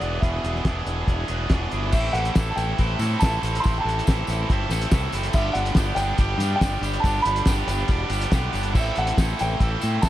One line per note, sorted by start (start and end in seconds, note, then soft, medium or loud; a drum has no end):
0.00 0.18 E1 medium
0.00 0.20 E2 medium
0.00 0.20 B2 medium
0.00 0.22 E3 medium
0.00 0.22 B3 medium
0.00 0.23 D4 medium
0.00 0.23 G#4 medium
0.00 0.20 D5 medium
0.00 closed hi-hat medium
0.20 0.39 E1 medium
0.20 0.65 E2 medium
0.20 0.65 B2 medium
0.20 0.46 E3 medium
0.20 0.45 B3 medium
0.20 1.46 E5 medium
0.20 kick loud
0.20 closed hi-hat medium
0.24 0.44 D4 medium
0.24 0.43 G#4 medium
0.44 0.61 E1 medium
0.44 0.64 E3 medium
0.44 0.65 B3 medium
0.44 0.66 D4 medium
0.44 0.67 G#4 medium
0.44 closed hi-hat medium
0.55 snare soft
0.65 0.82 E1 medium
0.65 1.31 E3 medium
0.65 1.30 B3 medium
0.65 1.29 D4 medium
0.65 1.28 G#4 medium
0.65 kick loud
0.65 snare loud
0.65 closed hi-hat medium
0.86 1.03 E1 medium
0.86 closed hi-hat medium
1.07 1.24 E1 medium
1.07 kick loud
1.07 closed hi-hat medium
1.28 1.46 E1 medium
1.28 1.52 B3 medium
1.28 1.52 D4 medium
1.28 1.53 G#4 medium
1.28 closed hi-hat medium
1.32 1.51 E3 soft
1.50 1.67 E1 medium
1.50 1.92 E2 medium
1.50 1.93 B2 medium
1.50 1.74 E3 medium
1.50 1.74 B3 medium
1.50 kick loud
1.50 snare loud
1.50 closed hi-hat medium
1.54 1.72 D4 medium
1.54 1.71 G#4 medium
1.72 1.93 G1 medium
1.72 1.94 B3 medium
1.72 1.93 D4 medium
1.72 1.93 G#4 medium
1.72 closed hi-hat medium
1.76 1.92 E3 medium
1.92 2.08 A1 medium
1.92 3.20 A2 medium
1.92 2.36 E3 medium
1.92 2.37 C4 medium
1.92 2.39 E4 loud
1.92 2.39 A4 loud
1.92 2.15 E5 medium
1.92 kick loud
1.92 crash loud
1.92 tambourine medium
2.13 2.29 A1 medium
2.13 2.51 F#5 medium
2.13 closed hi-hat medium
2.25 closed hi-hat medium
2.35 2.51 A1 medium
2.35 2.77 E3 medium
2.35 2.78 C4 medium
2.35 2.79 E4 medium
2.35 kick loud
2.35 snare loud
2.35 closed hi-hat medium
2.35 tambourine loud
2.40 2.80 A4 medium
2.50 2.58 A5 medium
2.56 2.72 A1 medium
2.56 3.23 G5 medium
2.56 closed hi-hat medium
2.56 tambourine medium
2.78 2.94 A1 medium
2.78 3.21 E3 medium
2.78 3.02 C4 medium
2.78 3.00 E4 medium
2.78 2.99 A4 medium
2.78 kick loud
2.78 closed hi-hat medium
2.78 tambourine soft
2.99 3.15 A2 medium
2.99 3.21 C4 medium
2.99 3.22 E4 medium
2.99 3.23 A4 medium
2.99 snare soft
2.99 closed hi-hat medium
2.99 tambourine medium
3.19 3.38 A1 medium
3.19 3.63 A2 medium
3.19 3.64 E3 medium
3.19 3.43 C4 loud
3.19 3.65 A5 loud
3.19 kick loud
3.19 snare loud
3.19 closed hi-hat medium
3.19 tambourine medium
3.23 3.42 E4 loud
3.23 3.40 A4 loud
3.41 3.58 A1 medium
3.41 3.65 C4 medium
3.41 3.66 E4 medium
3.41 3.67 A4 medium
3.41 closed hi-hat medium
3.41 tambourine medium
3.55 closed hi-hat medium
3.60 3.76 C6 loud
3.60 tambourine medium
3.64 3.80 A1 medium
3.64 4.28 A2 medium
3.64 4.06 E3 medium
3.64 4.08 C4 medium
3.64 4.08 E4 medium
3.64 4.09 A4 medium
3.64 kick loud
3.64 closed hi-hat medium
3.78 3.85 G5 medium
3.78 4.65 A5 loud
3.85 4.00 A1 medium
3.85 closed hi-hat medium
3.99 closed hi-hat medium
4.07 4.23 A1 medium
4.07 4.49 E3 medium
4.07 4.50 C4 medium
4.07 4.51 E4 medium
4.07 4.53 A4 medium
4.07 kick loud
4.07 snare loud
4.07 closed hi-hat medium
4.07 tambourine loud
4.27 4.43 A1 loud
4.27 closed hi-hat medium
4.27 tambourine medium
4.49 4.65 G1 medium
4.49 4.91 E3 medium
4.49 4.74 C4 medium
4.49 4.72 E4 medium
4.49 kick loud
4.49 closed hi-hat medium
4.49 tambourine soft
4.54 4.71 A4 medium
4.69 4.85 A1 medium
4.69 4.93 E4 medium
4.69 4.94 A4 medium
4.69 snare soft
4.69 closed hi-hat medium
4.69 tambourine medium
4.75 4.93 C4 medium
4.81 closed hi-hat medium
4.91 5.07 C2 loud
4.91 5.33 A2 medium
4.91 5.34 E3 loud
4.91 5.16 C4 loud
4.91 5.13 E4 loud
4.91 5.12 A4 loud
4.91 kick loud
4.91 snare loud
4.91 closed hi-hat medium
4.91 tambourine loud
5.12 5.28 F#1 medium
5.12 5.34 E4 medium
5.12 5.33 A4 medium
5.12 closed hi-hat medium
5.12 tambourine medium
5.17 5.35 C4 medium
5.23 closed hi-hat medium
5.33 5.50 G1 loud
5.33 6.61 G2 medium
5.33 5.99 D3 medium
5.33 5.75 G3 medium
5.33 5.77 B3 loud
5.33 5.78 D4 loud
5.33 5.80 G4 medium
5.33 5.54 E5 medium
5.33 kick loud
5.33 tambourine medium
5.33 crash loud
5.53 5.70 G1 medium
5.53 5.99 F#5 medium
5.53 closed hi-hat medium
5.66 closed hi-hat medium
5.75 5.92 G1 medium
5.75 6.17 G3 medium
5.75 6.18 B3 medium
5.75 6.19 D4 medium
5.75 kick loud
5.75 snare loud
5.75 closed hi-hat medium
5.75 tambourine loud
5.80 6.20 G4 medium
5.95 6.12 G1 medium
5.95 6.54 G5 loud
5.95 closed hi-hat medium
5.95 tambourine medium
6.18 6.34 G1 medium
6.18 6.42 G3 medium
6.18 6.41 B3 medium
6.18 6.39 D4 medium
6.18 6.39 G4 medium
6.18 kick loud
6.18 closed hi-hat medium
6.18 tambourine soft
6.38 6.54 G2 medium
6.38 6.63 D4 medium
6.38 6.63 G4 medium
6.38 snare soft
6.38 closed hi-hat medium
6.38 tambourine medium
6.42 6.62 G3 medium
6.42 6.62 B3 medium
6.56 6.99 G5 medium
6.61 6.77 G1 medium
6.61 7.03 G2 medium
6.61 7.04 D3 medium
6.61 6.85 G3 medium
6.61 6.84 B3 medium
6.61 6.83 D4 loud
6.61 6.82 G4 medium
6.61 kick loud
6.61 snare loud
6.61 closed hi-hat medium
6.61 tambourine medium
6.81 6.97 G1 medium
6.81 7.06 D4 medium
6.81 7.06 G4 medium
6.81 closed hi-hat medium
6.81 tambourine medium
6.86 7.05 G3 medium
6.86 7.05 B3 medium
6.93 closed hi-hat medium
7.00 7.68 G2 medium
7.00 7.25 A5 loud
7.00 kick loud
7.00 closed hi-hat medium
7.04 7.19 G1 medium
7.04 7.69 D3 medium
7.04 7.44 G3 medium
7.04 7.46 B3 loud
7.04 7.47 D4 loud
7.04 7.48 G4 loud
7.04 tambourine medium
7.22 7.41 G1 medium
7.22 8.05 B5 loud
7.22 closed hi-hat medium
7.27 tambourine soft
7.36 closed hi-hat medium
7.45 7.62 G1 medium
7.45 7.87 G3 medium
7.45 7.89 B3 medium
7.45 7.90 D4 medium
7.45 7.91 G4 medium
7.45 kick loud
7.45 snare loud
7.45 closed hi-hat medium
7.45 tambourine loud
7.67 7.83 G1 medium
7.67 closed hi-hat medium
7.67 tambourine medium
7.88 8.04 E1 medium
7.88 8.13 G3 medium
7.88 8.12 B3 medium
7.88 8.11 D4 medium
7.88 kick loud
7.88 closed hi-hat medium
7.88 tambourine soft
7.92 8.10 G4 medium
8.10 8.25 G1 medium
8.10 8.31 B3 medium
8.10 8.32 D4 medium
8.10 8.33 G4 medium
8.10 closed hi-hat medium
8.10 tambourine medium
8.14 8.31 G3 medium
8.21 closed hi-hat medium
8.30 8.47 B1 medium
8.30 8.73 G2 loud
8.30 8.73 D3 medium
8.30 8.55 G3 loud
8.30 8.54 B3 loud
8.30 8.53 D4 medium
8.30 8.51 G4 loud
8.30 kick loud
8.30 snare loud
8.30 closed hi-hat medium
8.30 tambourine loud
8.53 8.75 G1 medium
8.53 8.74 G3 medium
8.53 8.75 B3 medium
8.53 8.74 D4 medium
8.53 8.73 G4 medium
8.53 closed hi-hat medium
8.53 tambourine medium
8.63 closed hi-hat medium
8.73 8.90 A1 medium
8.73 10.02 A2 medium
8.73 9.16 E3 medium
8.73 9.17 C4 medium
8.73 9.19 E4 medium
8.73 9.20 A4 loud
8.73 kick loud
8.73 tambourine medium
8.73 crash loud
8.79 8.97 E5 medium
8.96 9.12 A1 medium
8.96 9.41 F#5 medium
8.96 closed hi-hat medium
9.07 closed hi-hat medium
9.16 9.32 A1 medium
9.16 9.58 E3 medium
9.16 9.60 C4 medium
9.16 9.61 E4 medium
9.16 kick loud
9.16 snare loud
9.16 closed hi-hat medium
9.16 tambourine loud
9.20 9.62 A4 medium
9.39 9.55 A1 medium
9.39 10.06 G5 loud
9.39 closed hi-hat medium
9.39 tambourine medium
9.59 9.75 A1 medium
9.59 10.02 E3 medium
9.59 9.84 C4 medium
9.59 9.82 E4 medium
9.59 9.80 A4 medium
9.59 kick loud
9.59 closed hi-hat medium
9.59 tambourine soft
9.81 9.98 A2 medium
9.81 10.03 C4 medium
9.81 10.03 E4 medium
9.81 10.04 A4 medium
9.81 closed hi-hat medium
9.81 tambourine medium
10.02 10.09 A1 medium
10.02 10.09 A2 medium
10.02 10.09 E3 loud
10.02 10.09 C4 medium
10.02 10.09 E4 loud
10.02 10.09 A4 loud
10.02 10.09 A5 medium
10.02 kick loud
10.02 snare loud
10.02 closed hi-hat medium
10.02 tambourine loud